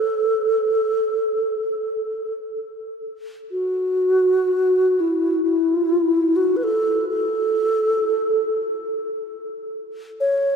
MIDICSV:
0, 0, Header, 1, 2, 480
1, 0, Start_track
1, 0, Key_signature, 3, "major"
1, 0, Tempo, 500000
1, 10137, End_track
2, 0, Start_track
2, 0, Title_t, "Alto flute"
2, 0, Program_c, 0, 73
2, 0, Note_on_c, 0, 69, 65
2, 2242, Note_off_c, 0, 69, 0
2, 3371, Note_on_c, 0, 66, 67
2, 4803, Note_on_c, 0, 64, 59
2, 4818, Note_off_c, 0, 66, 0
2, 5205, Note_off_c, 0, 64, 0
2, 5216, Note_on_c, 0, 64, 66
2, 6107, Note_on_c, 0, 66, 63
2, 6122, Note_off_c, 0, 64, 0
2, 6302, Note_on_c, 0, 71, 50
2, 6317, Note_off_c, 0, 66, 0
2, 6370, Note_on_c, 0, 69, 72
2, 6384, Note_off_c, 0, 71, 0
2, 6798, Note_off_c, 0, 69, 0
2, 6804, Note_on_c, 0, 69, 75
2, 8542, Note_off_c, 0, 69, 0
2, 9795, Note_on_c, 0, 73, 82
2, 10137, Note_off_c, 0, 73, 0
2, 10137, End_track
0, 0, End_of_file